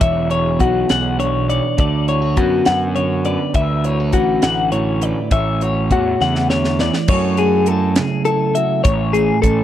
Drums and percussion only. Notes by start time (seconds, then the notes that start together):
0.01 kick, closed hi-hat
0.31 closed hi-hat
0.60 kick, closed hi-hat
0.89 snare, closed hi-hat
1.20 closed hi-hat
1.50 closed hi-hat
1.78 kick, closed hi-hat
2.08 closed hi-hat
2.37 kick, closed hi-hat
2.65 snare, closed hi-hat
2.96 closed hi-hat
3.25 closed hi-hat
3.54 kick, closed hi-hat
3.84 closed hi-hat
4.13 kick, closed hi-hat
4.42 snare, closed hi-hat
4.72 closed hi-hat
5.01 closed hi-hat
5.31 kick, closed hi-hat
5.61 closed hi-hat
5.91 kick, closed hi-hat
6.21 snare
6.35 snare
6.50 snare
6.64 snare
6.79 snare
6.93 snare
7.08 kick, crash
7.37 closed hi-hat
7.66 closed hi-hat
7.96 snare, closed hi-hat
8.25 closed hi-hat
8.55 closed hi-hat
8.85 kick, closed hi-hat
9.14 closed hi-hat
9.43 kick, closed hi-hat